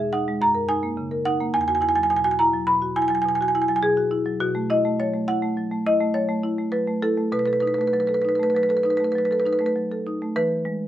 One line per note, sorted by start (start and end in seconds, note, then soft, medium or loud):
0.00 0.37 E2 medium
0.00 0.21 G#4 medium
0.00 0.12 E5 medium
0.13 0.35 D#4 medium
0.13 0.40 F#5 medium
0.28 0.42 G#3 medium
0.41 1.51 F#2 medium
0.41 0.68 A#5 medium
0.54 0.77 A#4 medium
0.69 0.91 D#4 medium
0.69 1.23 G#5 medium
0.83 1.06 A#3 soft
0.97 1.20 C#3 medium
1.11 1.34 A#4 medium
1.25 1.48 D#4 medium
1.25 1.53 F#5 loud
1.40 1.54 A#3 medium
1.54 4.36 E2 medium
1.54 1.61 G#5 loud
1.61 1.68 G#5 medium
1.68 1.91 F#4 medium
1.68 1.75 G#5 medium
1.75 1.82 G#5 medium
1.81 2.04 E4 medium
1.81 1.89 G#5 medium
1.89 1.95 G#5 medium
1.95 2.19 F#3 medium
1.95 2.03 G#5 medium
2.03 2.10 G#5 medium
2.10 2.33 B2 medium
2.10 2.16 G#5 medium
2.16 2.24 G#5 medium
2.24 2.48 F#4 medium
2.24 2.31 G#5 medium
2.31 2.36 G#5 medium
2.39 2.62 E4 medium
2.39 2.67 A#5 medium
2.53 2.76 F#3 medium
2.67 2.91 B2 medium
2.67 2.95 B5 loud
2.82 3.05 F#4 medium
2.96 3.19 E4 medium
2.96 3.02 G#5 loud
3.02 3.08 G#5 medium
3.08 3.34 F#3 medium
3.08 3.15 G#5 medium
3.15 3.22 G#5 medium
3.22 3.48 B2 medium
3.22 3.29 G#5 medium
3.29 3.35 G#5 medium
3.35 3.42 G#5 medium
3.41 3.63 F#4 medium
3.41 3.48 G#5 medium
3.48 3.55 G#5 medium
3.55 3.77 E4 medium
3.55 3.62 G#5 medium
3.62 3.68 G#5 medium
3.68 3.92 F#3 medium
3.68 3.76 G#5 medium
3.76 3.79 G#5 medium
3.83 4.06 B2 medium
3.83 4.38 G#4 medium
3.97 4.20 F#4 medium
4.11 4.34 E4 medium
4.26 4.40 F#3 medium
4.40 7.30 B2 medium
4.40 4.68 F#4 medium
4.55 4.78 A3 medium
4.70 4.93 E4 medium
4.70 4.98 D#5 medium
4.85 5.08 A3 medium
5.00 5.22 F#3 medium
5.00 5.27 C#5 medium
5.14 5.37 A3 soft
5.28 5.51 E4 medium
5.28 5.84 F#5 loud
5.42 5.66 A3 medium
5.57 5.80 F#3 soft
5.71 5.95 A3 soft
5.86 6.09 E4 medium
5.86 6.14 D#5 medium
6.01 6.24 A3 medium
6.14 6.38 F#3 medium
6.14 6.70 C#5 medium
6.29 6.52 A3 medium
6.43 6.67 E4 medium
6.58 6.82 A3 soft
6.72 6.96 F#3 soft
6.72 7.01 B4 medium
6.87 7.12 A3 soft
7.02 7.27 E4 medium
7.02 7.32 A4 medium
7.17 7.33 A3 medium
7.32 10.31 B2 medium
7.32 7.39 B4 medium
7.39 7.46 B4 medium
7.46 7.73 A4 medium
7.46 7.53 B4 medium
7.53 7.60 B4 medium
7.60 7.88 D#4 soft
7.60 7.67 B4 medium
7.67 7.74 B4 medium
7.74 7.81 B4 medium
7.78 8.03 A3 soft
7.78 7.87 B4 medium
7.87 7.93 B4 medium
7.93 8.18 F#3 soft
7.93 8.00 B4 medium
8.00 8.07 B4 medium
8.07 8.34 A4 soft
8.07 8.14 B4 medium
8.14 8.22 B4 medium
8.22 8.49 D#4 soft
8.22 8.29 B4 medium
8.29 8.35 B4 medium
8.35 8.43 B4 medium
8.39 8.64 A3 soft
8.39 8.50 B4 medium
8.50 8.57 B4 medium
8.55 8.80 F#3 soft
8.55 8.63 B4 medium
8.63 8.70 B4 medium
8.69 8.94 A4 soft
8.69 8.77 B4 medium
8.77 8.83 B4 medium
8.83 9.10 D#4 medium
8.83 8.90 B4 medium
8.90 8.97 B4 medium
8.97 9.25 A3 soft
8.97 9.04 B4 medium
9.04 9.12 B4 medium
9.12 9.40 F#3 soft
9.12 9.18 B4 medium
9.18 9.25 B4 medium
9.25 9.32 B4 medium
9.31 9.55 A4 medium
9.31 9.40 B4 medium
9.40 9.47 B4 medium
9.46 9.70 D#4 medium
9.46 9.53 B4 medium
9.53 9.59 B4 medium
9.59 9.85 A3 soft
9.59 9.66 B4 medium
9.66 9.72 B4 medium
9.76 10.00 F#3 soft
9.92 10.16 A4 medium
10.07 10.30 D#4 medium
10.22 10.36 A3 soft
10.36 10.88 E3 medium
10.36 10.88 B4 loud
10.65 10.88 G#3 medium